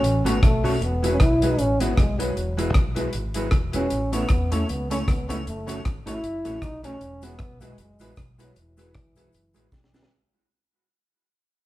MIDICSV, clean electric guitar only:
0, 0, Header, 1, 2, 480
1, 0, Start_track
1, 0, Key_signature, 4, "major"
1, 0, Tempo, 387347
1, 1007, Time_signature, 4, 2, 24, 8
1, 14440, End_track
2, 0, Start_track
2, 0, Title_t, "Clean electric guitar"
2, 0, Program_c, 0, 27
2, 311, Note_on_c, 0, 57, 102
2, 312, Note_on_c, 0, 61, 98
2, 320, Note_on_c, 0, 66, 107
2, 453, Note_off_c, 0, 57, 0
2, 453, Note_off_c, 0, 61, 0
2, 457, Note_off_c, 0, 66, 0
2, 787, Note_on_c, 0, 57, 95
2, 796, Note_on_c, 0, 66, 107
2, 798, Note_on_c, 0, 61, 85
2, 931, Note_off_c, 0, 57, 0
2, 936, Note_off_c, 0, 66, 0
2, 937, Note_off_c, 0, 61, 0
2, 1277, Note_on_c, 0, 56, 79
2, 1286, Note_on_c, 0, 64, 91
2, 1291, Note_on_c, 0, 66, 95
2, 1417, Note_off_c, 0, 56, 0
2, 1421, Note_off_c, 0, 64, 0
2, 1423, Note_off_c, 0, 66, 0
2, 1769, Note_on_c, 0, 56, 92
2, 1775, Note_on_c, 0, 64, 91
2, 1778, Note_on_c, 0, 66, 87
2, 1903, Note_off_c, 0, 56, 0
2, 1906, Note_off_c, 0, 64, 0
2, 1908, Note_off_c, 0, 66, 0
2, 2239, Note_on_c, 0, 56, 90
2, 2247, Note_on_c, 0, 64, 113
2, 2250, Note_on_c, 0, 66, 118
2, 2378, Note_off_c, 0, 56, 0
2, 2382, Note_off_c, 0, 64, 0
2, 2384, Note_off_c, 0, 66, 0
2, 2717, Note_on_c, 0, 56, 87
2, 2722, Note_on_c, 0, 64, 78
2, 2730, Note_on_c, 0, 66, 90
2, 2857, Note_off_c, 0, 56, 0
2, 2860, Note_off_c, 0, 64, 0
2, 2864, Note_off_c, 0, 66, 0
2, 3193, Note_on_c, 0, 56, 90
2, 3200, Note_on_c, 0, 64, 104
2, 3202, Note_on_c, 0, 66, 98
2, 3335, Note_off_c, 0, 56, 0
2, 3339, Note_off_c, 0, 64, 0
2, 3340, Note_off_c, 0, 66, 0
2, 3674, Note_on_c, 0, 56, 84
2, 3676, Note_on_c, 0, 64, 88
2, 3687, Note_on_c, 0, 66, 97
2, 3816, Note_off_c, 0, 56, 0
2, 3817, Note_off_c, 0, 64, 0
2, 3823, Note_off_c, 0, 66, 0
2, 4160, Note_on_c, 0, 56, 84
2, 4166, Note_on_c, 0, 64, 96
2, 4169, Note_on_c, 0, 66, 105
2, 4299, Note_off_c, 0, 56, 0
2, 4302, Note_off_c, 0, 64, 0
2, 4304, Note_off_c, 0, 66, 0
2, 4635, Note_on_c, 0, 56, 92
2, 4645, Note_on_c, 0, 64, 94
2, 4648, Note_on_c, 0, 66, 102
2, 4776, Note_off_c, 0, 56, 0
2, 4782, Note_off_c, 0, 64, 0
2, 4783, Note_off_c, 0, 66, 0
2, 5113, Note_on_c, 0, 57, 96
2, 5122, Note_on_c, 0, 61, 102
2, 5125, Note_on_c, 0, 64, 105
2, 5255, Note_off_c, 0, 57, 0
2, 5260, Note_off_c, 0, 61, 0
2, 5262, Note_off_c, 0, 64, 0
2, 5596, Note_on_c, 0, 57, 95
2, 5603, Note_on_c, 0, 61, 104
2, 5607, Note_on_c, 0, 64, 109
2, 5737, Note_off_c, 0, 57, 0
2, 5741, Note_off_c, 0, 61, 0
2, 5742, Note_off_c, 0, 64, 0
2, 6078, Note_on_c, 0, 57, 90
2, 6085, Note_on_c, 0, 61, 102
2, 6090, Note_on_c, 0, 64, 96
2, 6218, Note_off_c, 0, 57, 0
2, 6222, Note_off_c, 0, 61, 0
2, 6224, Note_off_c, 0, 64, 0
2, 6560, Note_on_c, 0, 57, 90
2, 6570, Note_on_c, 0, 61, 90
2, 6572, Note_on_c, 0, 64, 113
2, 6699, Note_off_c, 0, 57, 0
2, 6704, Note_off_c, 0, 61, 0
2, 6705, Note_off_c, 0, 64, 0
2, 7029, Note_on_c, 0, 57, 85
2, 7038, Note_on_c, 0, 61, 96
2, 7043, Note_on_c, 0, 66, 92
2, 7173, Note_off_c, 0, 57, 0
2, 7178, Note_off_c, 0, 61, 0
2, 7181, Note_off_c, 0, 66, 0
2, 7512, Note_on_c, 0, 57, 95
2, 7525, Note_on_c, 0, 61, 91
2, 7528, Note_on_c, 0, 66, 92
2, 7655, Note_off_c, 0, 57, 0
2, 7661, Note_off_c, 0, 61, 0
2, 7663, Note_off_c, 0, 66, 0
2, 7994, Note_on_c, 0, 57, 93
2, 8008, Note_on_c, 0, 61, 91
2, 8009, Note_on_c, 0, 66, 106
2, 8136, Note_off_c, 0, 57, 0
2, 8142, Note_off_c, 0, 61, 0
2, 8143, Note_off_c, 0, 66, 0
2, 8468, Note_on_c, 0, 57, 91
2, 8477, Note_on_c, 0, 61, 97
2, 8482, Note_on_c, 0, 66, 107
2, 8612, Note_off_c, 0, 57, 0
2, 8617, Note_off_c, 0, 61, 0
2, 8619, Note_off_c, 0, 66, 0
2, 8947, Note_on_c, 0, 56, 86
2, 8956, Note_on_c, 0, 64, 93
2, 8956, Note_on_c, 0, 66, 93
2, 9092, Note_off_c, 0, 56, 0
2, 9096, Note_off_c, 0, 64, 0
2, 9096, Note_off_c, 0, 66, 0
2, 9426, Note_on_c, 0, 56, 96
2, 9428, Note_on_c, 0, 64, 92
2, 9435, Note_on_c, 0, 66, 101
2, 9571, Note_off_c, 0, 56, 0
2, 9572, Note_off_c, 0, 64, 0
2, 9575, Note_off_c, 0, 66, 0
2, 9910, Note_on_c, 0, 56, 94
2, 9920, Note_on_c, 0, 64, 101
2, 9922, Note_on_c, 0, 66, 92
2, 10053, Note_off_c, 0, 56, 0
2, 10058, Note_off_c, 0, 64, 0
2, 10059, Note_off_c, 0, 66, 0
2, 10388, Note_on_c, 0, 56, 80
2, 10401, Note_on_c, 0, 64, 85
2, 10407, Note_on_c, 0, 66, 105
2, 10532, Note_off_c, 0, 56, 0
2, 10538, Note_off_c, 0, 64, 0
2, 10541, Note_off_c, 0, 66, 0
2, 10870, Note_on_c, 0, 56, 80
2, 10877, Note_on_c, 0, 64, 99
2, 10888, Note_on_c, 0, 66, 95
2, 11012, Note_off_c, 0, 56, 0
2, 11016, Note_off_c, 0, 64, 0
2, 11021, Note_off_c, 0, 66, 0
2, 11355, Note_on_c, 0, 56, 90
2, 11359, Note_on_c, 0, 64, 100
2, 11366, Note_on_c, 0, 66, 104
2, 11495, Note_off_c, 0, 56, 0
2, 11497, Note_off_c, 0, 64, 0
2, 11500, Note_off_c, 0, 66, 0
2, 11824, Note_on_c, 0, 56, 94
2, 11830, Note_on_c, 0, 64, 87
2, 11838, Note_on_c, 0, 66, 102
2, 11969, Note_off_c, 0, 56, 0
2, 11972, Note_off_c, 0, 64, 0
2, 11976, Note_off_c, 0, 66, 0
2, 12305, Note_on_c, 0, 56, 85
2, 12317, Note_on_c, 0, 64, 77
2, 12319, Note_on_c, 0, 66, 86
2, 12449, Note_off_c, 0, 56, 0
2, 12455, Note_off_c, 0, 64, 0
2, 12456, Note_off_c, 0, 66, 0
2, 14440, End_track
0, 0, End_of_file